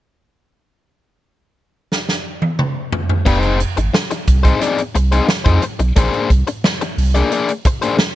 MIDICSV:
0, 0, Header, 1, 5, 480
1, 0, Start_track
1, 0, Tempo, 675676
1, 399, Time_signature, 4, 2, 24, 8
1, 5790, End_track
2, 0, Start_track
2, 0, Title_t, "Overdriven electric guitar"
2, 0, Program_c, 0, 29
2, 2312, Note_on_c, 0, 59, 77
2, 2318, Note_on_c, 0, 62, 76
2, 2324, Note_on_c, 0, 67, 76
2, 2326, Note_on_c, 0, 71, 81
2, 2405, Note_off_c, 0, 59, 0
2, 2405, Note_on_c, 0, 60, 77
2, 2411, Note_off_c, 0, 62, 0
2, 2411, Note_on_c, 0, 63, 76
2, 2416, Note_off_c, 0, 67, 0
2, 2416, Note_on_c, 0, 68, 76
2, 2418, Note_off_c, 0, 71, 0
2, 2418, Note_on_c, 0, 72, 81
2, 2537, Note_off_c, 0, 60, 0
2, 2540, Note_off_c, 0, 63, 0
2, 2542, Note_off_c, 0, 68, 0
2, 2544, Note_off_c, 0, 72, 0
2, 3149, Note_on_c, 0, 72, 74
2, 3156, Note_on_c, 0, 68, 67
2, 3159, Note_on_c, 0, 63, 66
2, 3165, Note_on_c, 0, 60, 64
2, 3262, Note_off_c, 0, 60, 0
2, 3267, Note_off_c, 0, 63, 0
2, 3271, Note_on_c, 0, 60, 87
2, 3272, Note_off_c, 0, 68, 0
2, 3275, Note_on_c, 0, 63, 84
2, 3277, Note_off_c, 0, 72, 0
2, 3281, Note_on_c, 0, 68, 85
2, 3285, Note_on_c, 0, 74, 94
2, 3398, Note_off_c, 0, 60, 0
2, 3400, Note_off_c, 0, 63, 0
2, 3403, Note_off_c, 0, 68, 0
2, 3405, Note_off_c, 0, 74, 0
2, 3636, Note_on_c, 0, 72, 56
2, 3639, Note_on_c, 0, 68, 57
2, 3645, Note_on_c, 0, 63, 56
2, 3651, Note_on_c, 0, 60, 47
2, 3734, Note_off_c, 0, 72, 0
2, 3735, Note_off_c, 0, 68, 0
2, 3738, Note_off_c, 0, 63, 0
2, 3741, Note_off_c, 0, 60, 0
2, 3869, Note_on_c, 0, 72, 69
2, 3874, Note_on_c, 0, 68, 68
2, 3877, Note_on_c, 0, 63, 78
2, 3883, Note_on_c, 0, 60, 65
2, 3983, Note_off_c, 0, 60, 0
2, 3990, Note_off_c, 0, 63, 0
2, 3990, Note_off_c, 0, 68, 0
2, 3996, Note_off_c, 0, 72, 0
2, 4235, Note_on_c, 0, 58, 71
2, 4241, Note_on_c, 0, 62, 73
2, 4244, Note_on_c, 0, 68, 76
2, 4249, Note_on_c, 0, 72, 89
2, 4457, Note_off_c, 0, 58, 0
2, 4460, Note_off_c, 0, 62, 0
2, 4462, Note_off_c, 0, 68, 0
2, 4465, Note_off_c, 0, 72, 0
2, 5077, Note_on_c, 0, 74, 83
2, 5082, Note_on_c, 0, 68, 78
2, 5086, Note_on_c, 0, 62, 79
2, 5091, Note_on_c, 0, 58, 71
2, 5191, Note_off_c, 0, 58, 0
2, 5194, Note_off_c, 0, 62, 0
2, 5197, Note_off_c, 0, 68, 0
2, 5200, Note_off_c, 0, 74, 0
2, 5200, Note_on_c, 0, 58, 91
2, 5203, Note_on_c, 0, 62, 90
2, 5205, Note_on_c, 0, 68, 88
2, 5209, Note_on_c, 0, 74, 95
2, 5321, Note_off_c, 0, 58, 0
2, 5323, Note_off_c, 0, 62, 0
2, 5324, Note_off_c, 0, 68, 0
2, 5326, Note_off_c, 0, 74, 0
2, 5554, Note_on_c, 0, 72, 57
2, 5561, Note_on_c, 0, 68, 54
2, 5563, Note_on_c, 0, 62, 64
2, 5568, Note_on_c, 0, 58, 49
2, 5651, Note_off_c, 0, 72, 0
2, 5655, Note_off_c, 0, 68, 0
2, 5656, Note_off_c, 0, 62, 0
2, 5658, Note_off_c, 0, 58, 0
2, 5790, End_track
3, 0, Start_track
3, 0, Title_t, "Sub bass"
3, 0, Program_c, 1, 38
3, 2319, Note_on_c, 1, 29, 96
3, 2588, Note_off_c, 1, 29, 0
3, 2681, Note_on_c, 1, 32, 78
3, 2770, Note_off_c, 1, 32, 0
3, 3040, Note_on_c, 1, 36, 82
3, 3219, Note_off_c, 1, 36, 0
3, 3518, Note_on_c, 1, 36, 75
3, 3698, Note_off_c, 1, 36, 0
3, 3878, Note_on_c, 1, 41, 110
3, 3968, Note_off_c, 1, 41, 0
3, 4117, Note_on_c, 1, 35, 82
3, 4207, Note_off_c, 1, 35, 0
3, 4238, Note_on_c, 1, 34, 92
3, 4328, Note_off_c, 1, 34, 0
3, 4478, Note_on_c, 1, 36, 84
3, 4568, Note_off_c, 1, 36, 0
3, 4956, Note_on_c, 1, 36, 78
3, 5136, Note_off_c, 1, 36, 0
3, 5790, End_track
4, 0, Start_track
4, 0, Title_t, "Muted overdriven electric guitar strokes"
4, 2678, Note_on_c, 9, 29, 40
4, 2749, Note_off_c, 9, 29, 0
4, 2796, Note_on_c, 9, 29, 35
4, 2867, Note_off_c, 9, 29, 0
4, 2917, Note_on_c, 9, 29, 36
4, 2988, Note_off_c, 9, 29, 0
4, 3515, Note_on_c, 9, 29, 45
4, 3586, Note_off_c, 9, 29, 0
4, 3753, Note_on_c, 9, 29, 35
4, 3824, Note_off_c, 9, 29, 0
4, 3992, Note_on_c, 9, 29, 43
4, 4063, Note_off_c, 9, 29, 0
4, 4116, Note_on_c, 9, 29, 39
4, 4187, Note_off_c, 9, 29, 0
4, 4599, Note_on_c, 9, 29, 45
4, 4670, Note_off_c, 9, 29, 0
4, 4721, Note_on_c, 9, 29, 31
4, 4792, Note_off_c, 9, 29, 0
4, 4840, Note_on_c, 9, 29, 40
4, 4911, Note_off_c, 9, 29, 0
4, 5437, Note_on_c, 9, 29, 32
4, 5508, Note_off_c, 9, 29, 0
4, 5790, End_track
5, 0, Start_track
5, 0, Title_t, "Drums"
5, 1362, Note_on_c, 9, 38, 50
5, 1433, Note_off_c, 9, 38, 0
5, 1482, Note_on_c, 9, 38, 53
5, 1553, Note_off_c, 9, 38, 0
5, 1718, Note_on_c, 9, 48, 64
5, 1789, Note_off_c, 9, 48, 0
5, 1839, Note_on_c, 9, 47, 72
5, 1910, Note_off_c, 9, 47, 0
5, 2078, Note_on_c, 9, 43, 92
5, 2149, Note_off_c, 9, 43, 0
5, 2199, Note_on_c, 9, 43, 91
5, 2270, Note_off_c, 9, 43, 0
5, 2317, Note_on_c, 9, 49, 80
5, 2318, Note_on_c, 9, 36, 97
5, 2388, Note_off_c, 9, 49, 0
5, 2390, Note_off_c, 9, 36, 0
5, 2436, Note_on_c, 9, 42, 37
5, 2507, Note_off_c, 9, 42, 0
5, 2559, Note_on_c, 9, 42, 61
5, 2630, Note_off_c, 9, 42, 0
5, 2679, Note_on_c, 9, 42, 51
5, 2750, Note_off_c, 9, 42, 0
5, 2801, Note_on_c, 9, 38, 102
5, 2872, Note_off_c, 9, 38, 0
5, 2918, Note_on_c, 9, 42, 58
5, 2989, Note_off_c, 9, 42, 0
5, 3037, Note_on_c, 9, 42, 66
5, 3038, Note_on_c, 9, 36, 81
5, 3108, Note_off_c, 9, 42, 0
5, 3109, Note_off_c, 9, 36, 0
5, 3159, Note_on_c, 9, 42, 53
5, 3160, Note_on_c, 9, 36, 85
5, 3230, Note_off_c, 9, 42, 0
5, 3231, Note_off_c, 9, 36, 0
5, 3277, Note_on_c, 9, 42, 72
5, 3280, Note_on_c, 9, 38, 32
5, 3348, Note_off_c, 9, 42, 0
5, 3351, Note_off_c, 9, 38, 0
5, 3398, Note_on_c, 9, 42, 51
5, 3469, Note_off_c, 9, 42, 0
5, 3518, Note_on_c, 9, 42, 70
5, 3589, Note_off_c, 9, 42, 0
5, 3638, Note_on_c, 9, 42, 53
5, 3709, Note_off_c, 9, 42, 0
5, 3755, Note_on_c, 9, 38, 94
5, 3826, Note_off_c, 9, 38, 0
5, 3875, Note_on_c, 9, 42, 47
5, 3877, Note_on_c, 9, 36, 93
5, 3946, Note_off_c, 9, 42, 0
5, 3948, Note_off_c, 9, 36, 0
5, 3993, Note_on_c, 9, 42, 78
5, 4064, Note_off_c, 9, 42, 0
5, 4117, Note_on_c, 9, 42, 49
5, 4188, Note_off_c, 9, 42, 0
5, 4236, Note_on_c, 9, 42, 93
5, 4238, Note_on_c, 9, 36, 99
5, 4307, Note_off_c, 9, 42, 0
5, 4309, Note_off_c, 9, 36, 0
5, 4358, Note_on_c, 9, 42, 33
5, 4429, Note_off_c, 9, 42, 0
5, 4477, Note_on_c, 9, 36, 72
5, 4479, Note_on_c, 9, 42, 70
5, 4548, Note_off_c, 9, 36, 0
5, 4550, Note_off_c, 9, 42, 0
5, 4599, Note_on_c, 9, 42, 53
5, 4670, Note_off_c, 9, 42, 0
5, 4719, Note_on_c, 9, 38, 106
5, 4790, Note_off_c, 9, 38, 0
5, 4841, Note_on_c, 9, 42, 50
5, 4912, Note_off_c, 9, 42, 0
5, 4960, Note_on_c, 9, 46, 66
5, 5031, Note_off_c, 9, 46, 0
5, 5081, Note_on_c, 9, 42, 46
5, 5152, Note_off_c, 9, 42, 0
5, 5198, Note_on_c, 9, 42, 71
5, 5269, Note_off_c, 9, 42, 0
5, 5319, Note_on_c, 9, 42, 54
5, 5390, Note_off_c, 9, 42, 0
5, 5435, Note_on_c, 9, 42, 74
5, 5436, Note_on_c, 9, 36, 92
5, 5506, Note_off_c, 9, 42, 0
5, 5507, Note_off_c, 9, 36, 0
5, 5556, Note_on_c, 9, 42, 55
5, 5627, Note_off_c, 9, 42, 0
5, 5673, Note_on_c, 9, 38, 100
5, 5744, Note_off_c, 9, 38, 0
5, 5790, End_track
0, 0, End_of_file